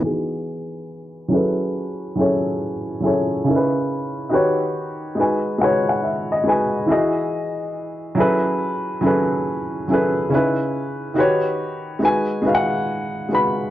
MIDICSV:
0, 0, Header, 1, 2, 480
1, 0, Start_track
1, 0, Key_signature, 4, "major"
1, 0, Tempo, 857143
1, 18, Time_signature, 4, 2, 24, 8
1, 7674, End_track
2, 0, Start_track
2, 0, Title_t, "Upright piano"
2, 0, Program_c, 0, 0
2, 0, Control_c, 0, 64, 127
2, 0, Note_on_c, 0, 52, 72
2, 2, Note_on_c, 0, 59, 64
2, 12, Note_on_c, 0, 63, 60
2, 21, Note_on_c, 0, 66, 68
2, 26, Control_c, 0, 64, 0
2, 28, Note_on_c, 0, 68, 78
2, 134, Control_c, 0, 64, 127
2, 718, Note_on_c, 0, 54, 83
2, 727, Note_off_c, 0, 52, 0
2, 727, Note_on_c, 0, 61, 67
2, 729, Note_off_c, 0, 68, 0
2, 730, Note_off_c, 0, 59, 0
2, 733, Note_on_c, 0, 64, 61
2, 735, Note_off_c, 0, 63, 0
2, 738, Note_on_c, 0, 68, 71
2, 739, Note_off_c, 0, 66, 0
2, 744, Control_c, 0, 64, 0
2, 745, Note_on_c, 0, 69, 70
2, 752, Note_on_c, 0, 71, 80
2, 849, Control_c, 0, 64, 127
2, 1189, Note_off_c, 0, 54, 0
2, 1193, Note_off_c, 0, 61, 0
2, 1196, Note_off_c, 0, 64, 0
2, 1199, Note_off_c, 0, 68, 0
2, 1202, Note_off_c, 0, 69, 0
2, 1206, Note_off_c, 0, 71, 0
2, 1207, Note_on_c, 0, 54, 71
2, 1212, Note_on_c, 0, 61, 69
2, 1220, Note_on_c, 0, 64, 63
2, 1227, Note_on_c, 0, 68, 71
2, 1233, Note_on_c, 0, 69, 64
2, 1239, Note_on_c, 0, 73, 83
2, 1673, Note_off_c, 0, 54, 0
2, 1676, Note_off_c, 0, 61, 0
2, 1680, Note_off_c, 0, 64, 0
2, 1682, Note_on_c, 0, 54, 58
2, 1683, Note_off_c, 0, 68, 0
2, 1686, Note_off_c, 0, 69, 0
2, 1689, Note_off_c, 0, 73, 0
2, 1690, Note_on_c, 0, 61, 55
2, 1696, Note_on_c, 0, 64, 57
2, 1700, Note_on_c, 0, 68, 59
2, 1706, Note_on_c, 0, 69, 60
2, 1715, Note_on_c, 0, 73, 76
2, 1920, Note_off_c, 0, 54, 0
2, 1925, Note_off_c, 0, 61, 0
2, 1926, Note_on_c, 0, 49, 71
2, 1927, Note_off_c, 0, 64, 0
2, 1929, Note_off_c, 0, 68, 0
2, 1933, Note_off_c, 0, 69, 0
2, 1935, Note_on_c, 0, 61, 71
2, 1937, Note_off_c, 0, 73, 0
2, 1942, Note_on_c, 0, 63, 64
2, 1946, Control_c, 0, 64, 0
2, 1949, Note_on_c, 0, 64, 64
2, 1960, Note_on_c, 0, 70, 65
2, 1995, Note_on_c, 0, 71, 80
2, 1997, Note_off_c, 0, 70, 0
2, 2030, Control_c, 0, 64, 127
2, 2400, Note_off_c, 0, 63, 0
2, 2404, Note_on_c, 0, 51, 86
2, 2408, Note_on_c, 0, 63, 79
2, 2412, Note_off_c, 0, 49, 0
2, 2415, Note_on_c, 0, 66, 90
2, 2417, Note_off_c, 0, 61, 0
2, 2420, Note_off_c, 0, 71, 0
2, 2422, Note_on_c, 0, 67, 80
2, 2424, Note_off_c, 0, 64, 0
2, 2426, Control_c, 0, 64, 0
2, 2428, Note_on_c, 0, 71, 81
2, 2436, Note_on_c, 0, 73, 90
2, 2531, Control_c, 0, 64, 127
2, 2872, Note_off_c, 0, 51, 0
2, 2874, Note_off_c, 0, 63, 0
2, 2877, Note_off_c, 0, 66, 0
2, 2881, Note_off_c, 0, 67, 0
2, 2884, Note_off_c, 0, 71, 0
2, 2884, Note_on_c, 0, 56, 70
2, 2888, Note_off_c, 0, 73, 0
2, 2894, Note_on_c, 0, 63, 62
2, 2901, Note_on_c, 0, 66, 61
2, 2905, Control_c, 0, 64, 0
2, 2910, Note_on_c, 0, 71, 64
2, 2917, Note_on_c, 0, 80, 78
2, 2991, Control_c, 0, 64, 127
2, 3118, Note_off_c, 0, 56, 0
2, 3126, Note_off_c, 0, 63, 0
2, 3126, Note_on_c, 0, 56, 73
2, 3130, Note_off_c, 0, 66, 0
2, 3135, Note_off_c, 0, 71, 0
2, 3135, Note_on_c, 0, 63, 68
2, 3138, Note_off_c, 0, 80, 0
2, 3144, Note_on_c, 0, 66, 72
2, 3144, Note_on_c, 0, 78, 65
2, 3152, Note_on_c, 0, 71, 74
2, 3160, Note_on_c, 0, 73, 93
2, 3286, Note_off_c, 0, 78, 0
2, 3299, Note_on_c, 0, 78, 60
2, 3375, Note_off_c, 0, 78, 0
2, 3379, Note_on_c, 0, 76, 60
2, 3524, Note_off_c, 0, 76, 0
2, 3539, Note_on_c, 0, 75, 75
2, 3593, Note_off_c, 0, 56, 0
2, 3597, Note_off_c, 0, 63, 0
2, 3602, Note_off_c, 0, 66, 0
2, 3604, Note_on_c, 0, 56, 73
2, 3606, Note_off_c, 0, 71, 0
2, 3610, Note_off_c, 0, 73, 0
2, 3611, Note_on_c, 0, 63, 66
2, 3619, Note_on_c, 0, 66, 64
2, 3628, Note_on_c, 0, 71, 64
2, 3635, Note_on_c, 0, 80, 78
2, 3838, Note_off_c, 0, 75, 0
2, 3840, Note_on_c, 0, 52, 67
2, 3841, Note_off_c, 0, 56, 0
2, 3845, Note_off_c, 0, 63, 0
2, 3849, Note_off_c, 0, 66, 0
2, 3850, Note_on_c, 0, 64, 68
2, 3853, Note_off_c, 0, 71, 0
2, 3857, Note_off_c, 0, 80, 0
2, 3857, Note_on_c, 0, 66, 75
2, 3866, Control_c, 0, 64, 0
2, 3866, Note_on_c, 0, 68, 75
2, 3874, Note_on_c, 0, 75, 86
2, 3970, Control_c, 0, 64, 127
2, 4563, Note_on_c, 0, 54, 86
2, 4566, Note_off_c, 0, 64, 0
2, 4567, Note_on_c, 0, 61, 68
2, 4569, Note_off_c, 0, 52, 0
2, 4572, Note_off_c, 0, 68, 0
2, 4575, Note_on_c, 0, 64, 77
2, 4578, Note_off_c, 0, 66, 0
2, 4581, Note_on_c, 0, 68, 66
2, 4585, Control_c, 0, 64, 0
2, 4586, Note_off_c, 0, 75, 0
2, 4588, Note_on_c, 0, 69, 67
2, 4593, Note_on_c, 0, 71, 96
2, 4676, Control_c, 0, 64, 127
2, 5031, Note_off_c, 0, 54, 0
2, 5033, Note_off_c, 0, 61, 0
2, 5037, Note_off_c, 0, 64, 0
2, 5040, Note_off_c, 0, 68, 0
2, 5044, Note_off_c, 0, 69, 0
2, 5044, Note_on_c, 0, 54, 78
2, 5046, Note_off_c, 0, 71, 0
2, 5052, Note_on_c, 0, 61, 72
2, 5056, Note_on_c, 0, 64, 59
2, 5064, Note_on_c, 0, 68, 68
2, 5069, Note_on_c, 0, 69, 65
2, 5076, Note_on_c, 0, 71, 75
2, 5512, Note_off_c, 0, 54, 0
2, 5516, Note_off_c, 0, 61, 0
2, 5518, Note_off_c, 0, 64, 0
2, 5522, Note_off_c, 0, 68, 0
2, 5524, Note_off_c, 0, 69, 0
2, 5528, Note_off_c, 0, 71, 0
2, 5531, Note_on_c, 0, 54, 62
2, 5538, Note_on_c, 0, 61, 57
2, 5544, Note_on_c, 0, 64, 61
2, 5552, Note_on_c, 0, 68, 69
2, 5559, Note_on_c, 0, 69, 58
2, 5563, Note_on_c, 0, 71, 76
2, 5762, Note_off_c, 0, 61, 0
2, 5763, Note_on_c, 0, 49, 65
2, 5765, Note_off_c, 0, 54, 0
2, 5770, Note_on_c, 0, 61, 77
2, 5772, Note_off_c, 0, 64, 0
2, 5776, Note_off_c, 0, 68, 0
2, 5778, Note_on_c, 0, 63, 67
2, 5779, Note_off_c, 0, 69, 0
2, 5781, Note_off_c, 0, 71, 0
2, 5785, Control_c, 0, 64, 0
2, 5786, Note_on_c, 0, 64, 70
2, 5795, Note_on_c, 0, 71, 79
2, 5896, Control_c, 0, 64, 127
2, 6238, Note_off_c, 0, 63, 0
2, 6239, Note_on_c, 0, 51, 82
2, 6247, Note_on_c, 0, 63, 77
2, 6250, Note_off_c, 0, 49, 0
2, 6251, Note_on_c, 0, 66, 83
2, 6254, Note_off_c, 0, 61, 0
2, 6255, Note_off_c, 0, 71, 0
2, 6260, Note_on_c, 0, 67, 78
2, 6262, Note_off_c, 0, 64, 0
2, 6264, Note_on_c, 0, 71, 77
2, 6265, Control_c, 0, 64, 0
2, 6273, Note_on_c, 0, 73, 93
2, 6372, Control_c, 0, 64, 127
2, 6709, Note_off_c, 0, 51, 0
2, 6713, Note_off_c, 0, 63, 0
2, 6715, Note_on_c, 0, 56, 74
2, 6716, Note_off_c, 0, 66, 0
2, 6720, Note_off_c, 0, 67, 0
2, 6722, Note_off_c, 0, 71, 0
2, 6722, Note_on_c, 0, 63, 75
2, 6726, Note_off_c, 0, 73, 0
2, 6733, Note_on_c, 0, 66, 69
2, 6740, Note_on_c, 0, 71, 64
2, 6745, Control_c, 0, 64, 0
2, 6748, Note_on_c, 0, 80, 86
2, 6848, Control_c, 0, 64, 127
2, 6946, Note_off_c, 0, 56, 0
2, 6954, Note_off_c, 0, 63, 0
2, 6955, Note_on_c, 0, 56, 75
2, 6962, Note_on_c, 0, 63, 66
2, 6964, Note_off_c, 0, 66, 0
2, 6969, Note_off_c, 0, 71, 0
2, 6972, Note_on_c, 0, 66, 66
2, 6973, Note_off_c, 0, 80, 0
2, 6979, Note_on_c, 0, 71, 62
2, 6987, Note_on_c, 0, 77, 60
2, 7026, Note_on_c, 0, 78, 84
2, 7030, Note_off_c, 0, 77, 0
2, 7427, Note_off_c, 0, 56, 0
2, 7431, Note_off_c, 0, 63, 0
2, 7436, Note_off_c, 0, 66, 0
2, 7439, Note_off_c, 0, 71, 0
2, 7441, Note_on_c, 0, 56, 60
2, 7450, Note_on_c, 0, 63, 58
2, 7457, Note_on_c, 0, 66, 57
2, 7463, Note_off_c, 0, 78, 0
2, 7465, Note_on_c, 0, 71, 60
2, 7474, Note_on_c, 0, 83, 81
2, 7674, Note_off_c, 0, 56, 0
2, 7674, Note_off_c, 0, 63, 0
2, 7674, Note_off_c, 0, 66, 0
2, 7674, Note_off_c, 0, 71, 0
2, 7674, Note_off_c, 0, 83, 0
2, 7674, End_track
0, 0, End_of_file